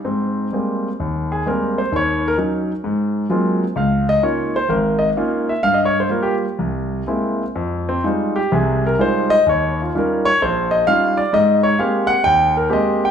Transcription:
X:1
M:4/4
L:1/16
Q:"Swing" 1/4=129
K:Ab
V:1 name="Grand piano"
z8 z2 A2 B2 c2 | d2 B2 z12 | f2 e2 d2 c2 B2 e2 z3 _f | f e d c B G z8 z2 |
z2 C2 E2 G2 A2 B2 c2 e2 | d2 F2 B2 d2 c2 e2 f2 =d2 | e2 d2 f2 _g2 =g2 B2 e2 g2 |]
V:2 name="Grand piano"
[A,,C]4 [G,A,B,C]2 z2 E,,4 [G,A,B,C]2 z2 | [E,,E,]4 [_G,DE]2 z2 A,,4 [G,A,B,CF]2 z2 | D,,4 [B,DEF]2 z2 A,,,4 [B,DEF]2 z2 | G,,4 [G,B,F]2 z2 C,,4 [^G,B,C=E]2 z2 |
F,,4 [G,A,F]2 z2 [C,,C,]4 [G,A,EF]2 z2 | E,,4 [G,DEF]2 z2 B,,,4 [G,DEF]2 z2 | A,,4 [A,B,CG]2 z2 E,,4 [A,B,CG]2 z2 |]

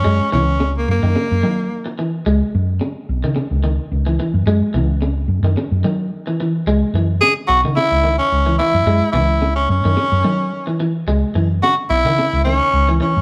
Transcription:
X:1
M:4/4
L:1/16
Q:"Swing 16ths" 1/4=109
K:C#dor
V:1 name="Tenor saxophone"
C2 C3 A, A,8 z2 | z16 | z16 | z4 G2 F2 E3 C3 E2- |
E2 E3 C C8 z2 | z4 F2 E4 C4 C2 |]
V:2 name="Clean electric guitar" clef=bass
G,2 E,2 C,2 z D, C,2 D,2 z2 E,2 | G,2 z2 C,2 z D, C,2 D,2 z E, E,2 | G,2 E,2 C,2 z D, C,2 D,2 z E, E,2 | G,2 E,2 C,2 z D, C,2 D,2 z E, E,2 |
G,2 E,2 C,2 z D, C,2 D,2 z E, E,2 | G,2 E,2 C,2 z D, C,2 D,2 z E, E,2 |]
V:3 name="Fingered electric bass" clef=bass
F,, z C,,4 F,, F,, z F,, F,2 z4 | C,, z F,,2 z2 B,,, C, z C,,2 z C,,2 z F,, | F,, z C,,4 F,, F,, z F,, F,2 z4 | C,, z F,,2 z2 B,,, C, z C,,2 z C,,2 z F,, |
F,, z C,,4 F,, F,, z F,, F,2 z4 | C,, z F,,2 z2 B,,, C, z C,,2 z C,,2 z F,, |]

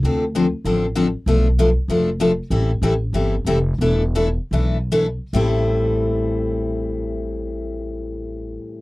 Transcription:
X:1
M:4/4
L:1/8
Q:"Swing" 1/4=176
K:Am
V:1 name="Steel-string acoustic guitar"
[D,F,CDA] z [D,F,CDA] z [D,F,CDA] z [D,F,CDA] z | [B,,F,A,DA] z [B,,F,A,DA] z [B,,F,A,DA] z [B,,F,A,DA] z | [E,G,CEA] z [E,G,CEA] z [E,G,CEA] z [E,G,CEA] z | [E,A,DEA] z [E,A,DEA] z [E,A,DEA] z [E,A,DEA] z |
[A,,E,G,CEA]8- | [A,,E,G,CEA]8 |]
V:2 name="Upright bass" clef=bass
D,,4 A,,,4 | B,,,4 F,,,4 | A,,,2 A,,,2 G,,,2 F,,,2 | E,,,4 B,,,4 |
A,,,8- | A,,,8 |]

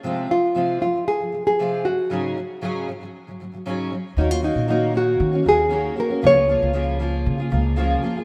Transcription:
X:1
M:4/4
L:1/16
Q:1/4=116
K:Ebdor
V:1 name="Nylon-string guitar"
z2 F4 F2 A3 A3 G2- | G6 z8 z2 | E F E2 E2 G4 A4 B2 | d8 z8 |]
V:2 name="Steel-string acoustic guitar"
[C,F,A,CF]2 [C,F,]2 [C,F,A,CF]2 [C,F,] [C,F,]2 [C,F,] [C,F,] [C,F,] [C,F,A,CF]2 [A,,D,G,]2 | [A,,D,G,DEA]2 [A,,D,G,]2 [A,,D,G,DEA]2 [A,,D,G,] [A,,D,G,]2 [A,,D,G,] [A,,D,G,] [A,,D,G,] [A,,D,G,DEA]2 [A,,D,G,]2 | [E,B,DG] [B,DG] [E,B,DG]2 [E,B,DG]2 [E,B,DG]3 [B,DG] [E,B,DG]2 [E,B,DG]2 [E,B,DG] [B,DG] | [D,F,B,FA] [B,FA] [F,B,FA]2 [D,F,B,FA]2 [F,B,FA]3 [B,FA] [F,B,FA]2 [D,F,B,FA]2 [F,B,FA] [B,FA] |]
V:3 name="Upright bass" clef=bass
z16 | z16 | E,,3 B,,4- B,, E,2 E,,4 z2 | D,,3 D,,4- D,, D,2 D,,4 z2 |]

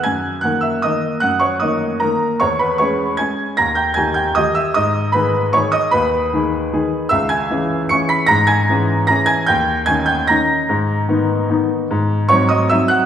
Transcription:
X:1
M:3/4
L:1/8
Q:1/4=151
K:G#m
V:1 name="Upright piano"
[gg']2 [ff'] [ee'] [dd']2 | [ff'] [cc'] [dd']2 [Aa]2 | [cc'] [Bb] [cc']2 [gg']2 | [aa'] [=g=g'] [^g^g'] [=g=g'] [dd'] [ee'] |
[dd']2 [Bb]2 [cc'] [dd'] | [Bb]6 | [ee'] [gg']3 [c'c''] [bb'] | [aa'] [gg']3 [aa'] [gg'] |
[=g=g']2 [^g^g'] [=g=g'] [aa']2- | [aa']4- [aa'] z | z2 [cc'] [dd'] [ee'] [ff'] |]
V:2 name="Upright piano"
F,,2 [D,A,A]2 [D,A,A]2 | F,,2 [D,A,A]2 [D,A,]2 | E,,2 [G,CG]2 [G,CG]2 | D,,2 [D,D=G]2 [D,DG]2 |
G,,2 [D,DG]2 [D,DG]2 | D,,2 [D,DG]2 [D,DG]2 | C,,2 [E,CG]2 [E,CG]2 | G,,2 [E,CG]2 [E,CG]2 |
D,,2 [D,CD]2 [D,CD]2 | G,,2 [D,B,D]2 [D,B,D]2 | G,,2 [F,^B,D]2 [F,B,D]2 |]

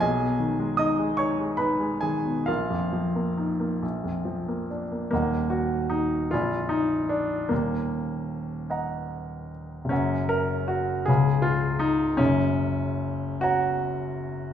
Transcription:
X:1
M:6/8
L:1/16
Q:3/8=50
K:Ebm
V:1 name="Grand piano"
[Aea]4 [ee']2 [dd']2 [cc']2 [Aa]2 | [FBf]8- [FBf]2 z2 | B,2 G2 E2 F2 E2 =D2 | B,8- B,2 z2 |
D2 B2 G2 A2 F2 E2 | D6 G6 |]
V:2 name="Grand piano"
C,, C, E, A, E A, E A, E A, E, C, | B,,, F,, F, B, E B, B,,, F,, F, B, =D B, | [E,,,E,,egb]6 [B,,,,B,,,=dac']6 | [E,,,E,,]6 [egb]6 |
[G,,,G,,dgb]6 [D,,,D,,dfc']6 | [G,,,G,,]6 [dgb]6 |]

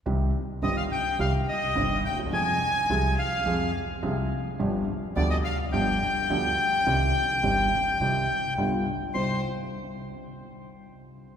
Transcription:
X:1
M:4/4
L:1/16
Q:1/4=106
K:Cm
V:1 name="Bandoneon"
z4 e f g2 f2 e4 g2 | a6 f4 z6 | z4 d e f2 g8- | g12 z4 |
c'2 z12 z2 |]
V:2 name="Violin section"
z4 e f g2 f2 e4 g2 | a6 f4 z6 | z4 d e f2 g8- | g12 z4 |
c2 z12 z2 |]
V:3 name="Upright piano" clef=bass
[C,,C,E,G,CG]2 z2 [G,,,G,,E,G,CG]2 z2 [C,,C,E,G,CG]2 z2 [G,,,G,,E,G,CG]2 z/2 D,,/2 E,,/2 =E,,/2 | [F,,F,A,CA]2 z2 [C,,C,F,A,CA]2 z2 [F,,F,A,CA]2 z2 [C,,C,F,A,CA]2 z2 | [G,,,G,,F,=B,DG]2 z2 [D,,D,F,B,DG]2 z2 [G,,,G,,F,B,DG]2 z2 [D,,D,F,B,DG]2 z2 | [C,,C,E,G,CG]2 z2 [G,,,G,,E,G,CG]2 z2 [C,,C,E,G,CG]2 z2 [G,,,G,,D,G,=B,F]2 z2 |
[C,,G,CE]2 z12 z2 |]
V:4 name="Upright bass" clef=bass
C,,3/2 z2 z/2 G,,,3/2 z2 z/2 C,,3/2 z2 z/2 G,,,3/2 z D,,/2 E,,/2 =E,,/2 | F,,3/2 z2 z/2 C,,3/2 z2 z/2 F,,3/2 z2 z/2 C,,3/2 z2 z/2 | G,,,3/2 z2 z/2 D,,3/2 z2 z/2 G,,,3/2 z2 z/2 D,,3/2 z2 z/2 | C,,3/2 z2 z/2 G,,,3/2 z2 z/2 C,,3/2 z2 z/2 G,,,3/2 z2 z/2 |
C,,2 z12 z2 |]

